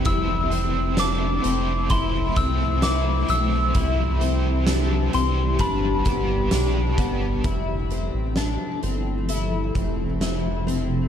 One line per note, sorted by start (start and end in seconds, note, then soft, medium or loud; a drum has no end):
0.00 5.55 C4 medium
0.05 1.40 F1 loud
0.05 0.52 F3 medium
0.05 3.71 F3 medium
0.05 3.71 A3 medium
0.05 0.52 A3 medium
0.05 0.52 C4 medium
0.05 5.55 E4 medium
0.05 0.51 E4 medium
0.05 3.71 A4 medium
0.05 0.49 C5 medium
0.05 1.01 E6 loud
0.05 kick loud
0.05 closed hi-hat medium
0.50 0.98 E4 medium
0.50 0.97 C5 medium
0.50 closed hi-hat soft
0.55 0.97 C4 soft
0.96 1.43 A3 medium
0.96 1.44 C4 medium
0.96 1.44 D4 medium
0.96 1.44 E4 medium
0.96 1.94 D6 loud
0.96 snare loud
0.96 closed hi-hat medium
0.96 tambourine medium
1.00 1.42 C5 medium
1.43 2.33 F1 loud
1.43 1.90 E4 soft
1.43 1.90 C5 medium
1.43 closed hi-hat medium
1.47 1.90 C4 soft
1.90 2.36 F3 medium
1.90 2.36 A3 medium
1.90 2.37 C4 medium
1.90 2.36 E4 medium
1.90 2.34 C5 medium
1.90 2.38 C6 loud
1.90 kick loud
1.90 closed hi-hat medium
2.35 3.25 C2 medium
2.35 2.83 E4 soft
2.35 2.82 C5 medium
2.35 2.80 E6 loud
2.35 kick medium
2.35 closed hi-hat medium
2.39 2.82 C4 soft
2.81 3.28 A3 medium
2.81 3.29 C4 medium
2.81 3.29 E4 medium
2.81 3.30 D6 medium
2.81 snare loud
2.81 closed hi-hat medium
2.81 tambourine medium
2.85 3.26 C5 medium
3.27 3.73 B1 medium
3.27 3.75 E4 soft
3.27 3.74 C5 medium
3.27 5.10 E6 loud
3.27 closed hi-hat medium
3.32 3.74 C4 soft
3.74 5.10 C2 loud
3.74 4.21 C3 medium
3.74 5.58 E3 medium
3.74 4.21 E3 medium
3.74 7.40 G3 medium
3.74 4.21 G3 medium
3.74 4.22 C4 medium
3.74 4.20 E4 medium
3.74 7.40 G4 loud
3.74 4.18 C5 medium
3.74 kick loud
3.74 closed hi-hat medium
4.20 4.66 C4 medium
4.20 4.68 E4 medium
4.20 4.67 C5 medium
4.20 closed hi-hat soft
4.24 4.65 G3 soft
4.66 5.13 G3 medium
4.66 5.14 C4 medium
4.66 5.13 D4 medium
4.66 5.13 E4 medium
4.66 snare loud
4.66 closed hi-hat medium
4.66 tambourine medium
4.70 5.12 C5 medium
5.13 5.58 C2 loud
5.13 5.60 C4 soft
5.13 5.60 E4 medium
5.13 5.59 C5 medium
5.13 5.62 C6 medium
5.13 closed hi-hat medium
5.17 5.57 G3 soft
5.59 6.04 G1 loud
5.59 7.42 B2 medium
5.59 7.42 D3 medium
5.59 6.05 G3 medium
5.59 7.42 D4 medium
5.59 6.06 D4 medium
5.59 6.05 G4 medium
5.59 6.03 B4 medium
5.59 6.95 B5 medium
5.59 kick loud
5.59 closed hi-hat medium
6.04 6.50 G1 loud
6.04 6.52 B3 medium
6.04 6.52 G4 soft
6.04 6.51 B4 medium
6.04 kick loud
6.04 closed hi-hat medium
6.09 6.51 D4 soft
6.51 6.96 B1 loud
6.51 6.98 G3 medium
6.51 6.98 D4 medium
6.51 6.98 G4 medium
6.51 6.96 B4 medium
6.51 snare medium
6.51 closed hi-hat medium
6.51 tambourine medium
6.97 7.42 G1 loud
6.97 7.44 B3 medium
6.97 7.45 G4 soft
6.97 7.44 B4 medium
6.97 kick loud
6.97 closed hi-hat medium
7.01 7.46 D4 soft
7.43 8.10 F1 loud
7.43 11.08 C3 medium
7.43 11.08 F3 medium
7.43 11.08 A3 medium
7.43 11.08 E4 medium
7.43 7.91 E4 medium
7.43 11.08 A4 medium
7.43 kick loud
7.43 closed hi-hat medium
7.90 8.36 C4 medium
7.90 closed hi-hat soft
8.14 8.58 A1 medium
8.36 8.83 D4 medium
8.36 snare loud
8.36 closed hi-hat medium
8.83 9.71 G1 loud
8.83 9.29 C4 medium
8.83 closed hi-hat soft
9.29 9.75 E4 medium
9.29 closed hi-hat medium
9.75 11.08 F1 loud
9.75 10.21 C4 medium
9.75 kick medium
9.75 closed hi-hat soft
10.21 10.67 E4 medium
10.21 snare loud
10.21 closed hi-hat medium
10.67 11.08 C4 medium
10.67 closed hi-hat medium